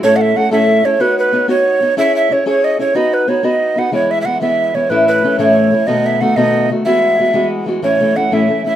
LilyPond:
<<
  \new Staff \with { instrumentName = "Recorder" } { \time 6/8 \key e \major \tempo 4. = 123 cis''16. fis''32 e''8 fis''8 e''4 cis''8 | b'8 b'4 cis''4. | e''8 e''8 cis''8 cis''8 dis''8 cis''8 | dis''8 b'8 cis''8 dis''4 fis''8 |
cis''8 e''16. e''32 fis''8 e''4 cis''8 | b'8 b'4 cis''4. | dis''8 e''8 fis''8 dis''4 r8 | e''2 r4 |
\key a \major cis''4 fis''8 e''4 e''8 | }
  \new Staff \with { instrumentName = "Steel-string acoustic guitar" } { \time 6/8 \key e \major <a, a cis' e' a'>4 <a cis' e' a'>8 <a, a cis' e' a'>4 <a cis' e' a'>8 | <b dis' fis' cis''>4 <b dis' fis' cis''>8 <b dis' fis' cis''>4 <b dis' fis' cis''>8 | <cis' e' gis' cis''>4 <cis' e' gis' cis''>8 <cis' e' gis' cis''>4 <cis' e' gis' cis''>8 | <b dis' fis' b'>4 <b dis' fis' b'>8 <b dis' fis' b'>4 <b dis' fis' b'>8 |
<e gis b e'>4 <e gis b e'>8 <e gis b e'>4 <e gis b e'>8 | <a, e a cis' e'>4 <e a cis' e'>8 <a, e a cis' e'>4 <e a cis' e'>8 | <b, dis a b fis'>4 <dis a b fis'>8 <b, dis a b fis'>4 <dis a b fis'>8 | <e gis b fis'>4 <e gis b fis'>8 <e gis b fis'>4 <e gis b fis'>8 |
\key a \major <a, e a cis' e'>8 <e a cis' e'>8 <e a cis' e'>8 <a, e a cis' e'>8 <e a cis' e'>8 <e a cis' e'>8 | }
>>